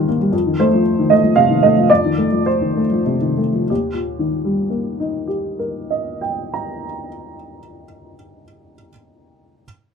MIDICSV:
0, 0, Header, 1, 2, 480
1, 0, Start_track
1, 0, Key_signature, -3, "major"
1, 0, Tempo, 513259
1, 306, Time_signature, 3, 2, 24, 8
1, 1267, Tempo, 550459
1, 2227, Tempo, 621118
1, 8013, End_track
2, 0, Start_track
2, 0, Title_t, "Upright piano"
2, 0, Program_c, 0, 0
2, 0, Control_c, 0, 64, 127
2, 0, Note_on_c, 0, 39, 44
2, 0, Note_on_c, 0, 46, 33
2, 0, Note_on_c, 0, 51, 37
2, 0, Note_on_c, 0, 55, 35
2, 0, Note_on_c, 0, 58, 35
2, 0, Note_on_c, 0, 70, 53
2, 0, Note_on_c, 0, 72, 67
2, 78, Note_off_c, 0, 58, 0
2, 78, Note_on_c, 0, 58, 38
2, 144, Note_off_c, 0, 51, 0
2, 194, Note_off_c, 0, 55, 0
2, 194, Note_on_c, 0, 55, 36
2, 264, Note_off_c, 0, 58, 0
2, 284, Note_off_c, 0, 39, 0
2, 302, Note_on_c, 0, 41, 46
2, 310, Note_off_c, 0, 55, 0
2, 320, Control_c, 0, 64, 0
2, 324, Note_off_c, 0, 72, 0
2, 325, Note_off_c, 0, 46, 0
2, 326, Note_off_c, 0, 70, 0
2, 433, Note_on_c, 0, 51, 36
2, 486, Control_c, 0, 64, 127
2, 558, Note_on_c, 0, 72, 61
2, 561, Note_on_c, 0, 57, 39
2, 621, Note_off_c, 0, 51, 0
2, 684, Note_on_c, 0, 53, 39
2, 745, Note_off_c, 0, 57, 0
2, 927, Note_on_c, 0, 51, 37
2, 1028, Note_on_c, 0, 75, 61
2, 1032, Note_off_c, 0, 72, 0
2, 1039, Note_on_c, 0, 57, 36
2, 1059, Note_off_c, 0, 53, 0
2, 1109, Note_off_c, 0, 51, 0
2, 1151, Note_on_c, 0, 53, 33
2, 1225, Note_off_c, 0, 57, 0
2, 1268, Note_off_c, 0, 75, 0
2, 1269, Note_on_c, 0, 77, 63
2, 1278, Note_on_c, 0, 48, 33
2, 1337, Note_off_c, 0, 53, 0
2, 1395, Note_on_c, 0, 51, 33
2, 1456, Note_off_c, 0, 48, 0
2, 1498, Note_off_c, 0, 77, 0
2, 1504, Note_on_c, 0, 75, 63
2, 1506, Note_on_c, 0, 57, 39
2, 1574, Note_off_c, 0, 51, 0
2, 1630, Note_on_c, 0, 53, 33
2, 1691, Note_off_c, 0, 57, 0
2, 1698, Note_off_c, 0, 41, 0
2, 1738, Note_off_c, 0, 75, 0
2, 1739, Note_on_c, 0, 74, 63
2, 1753, Control_c, 0, 64, 0
2, 1754, Note_on_c, 0, 41, 43
2, 1815, Note_off_c, 0, 53, 0
2, 1872, Note_on_c, 0, 51, 33
2, 1916, Control_c, 0, 64, 127
2, 1986, Note_on_c, 0, 57, 32
2, 2061, Note_off_c, 0, 51, 0
2, 2111, Note_on_c, 0, 53, 30
2, 2181, Note_off_c, 0, 57, 0
2, 2229, Note_off_c, 0, 74, 0
2, 2232, Note_on_c, 0, 72, 49
2, 2348, Note_on_c, 0, 51, 30
2, 2468, Note_on_c, 0, 57, 29
2, 2483, Note_off_c, 0, 53, 0
2, 2529, Note_off_c, 0, 51, 0
2, 2580, Note_on_c, 0, 53, 26
2, 2650, Note_off_c, 0, 57, 0
2, 2696, Note_on_c, 0, 48, 27
2, 2769, Note_off_c, 0, 53, 0
2, 2812, Note_on_c, 0, 51, 24
2, 2891, Note_off_c, 0, 48, 0
2, 2941, Note_on_c, 0, 57, 25
2, 2942, Note_off_c, 0, 72, 0
2, 3014, Note_off_c, 0, 51, 0
2, 3060, Note_on_c, 0, 53, 24
2, 3139, Note_off_c, 0, 57, 0
2, 3164, Note_off_c, 0, 41, 0
2, 3184, Note_off_c, 0, 53, 0
2, 3188, Note_on_c, 0, 67, 36
2, 3191, Note_on_c, 0, 39, 32
2, 3201, Control_c, 0, 64, 0
2, 3335, Control_c, 0, 64, 127
2, 3373, Note_on_c, 0, 46, 29
2, 3569, Note_on_c, 0, 51, 30
2, 3767, Note_on_c, 0, 55, 28
2, 3961, Note_on_c, 0, 58, 27
2, 4192, Note_on_c, 0, 63, 28
2, 4393, Note_off_c, 0, 67, 0
2, 4405, Note_on_c, 0, 67, 30
2, 4651, Note_on_c, 0, 70, 28
2, 4893, Note_on_c, 0, 75, 26
2, 5131, Note_on_c, 0, 79, 22
2, 5380, Note_on_c, 0, 82, 24
2, 5619, Note_off_c, 0, 39, 0
2, 5801, Note_off_c, 0, 46, 0
2, 5997, Note_off_c, 0, 51, 0
2, 6195, Note_off_c, 0, 55, 0
2, 6390, Note_off_c, 0, 58, 0
2, 6621, Note_off_c, 0, 63, 0
2, 6833, Note_off_c, 0, 67, 0
2, 7079, Note_off_c, 0, 70, 0
2, 7200, Note_off_c, 0, 82, 0
2, 7202, Note_off_c, 0, 79, 0
2, 7205, Note_off_c, 0, 75, 0
2, 7783, Control_c, 0, 64, 0
2, 8013, End_track
0, 0, End_of_file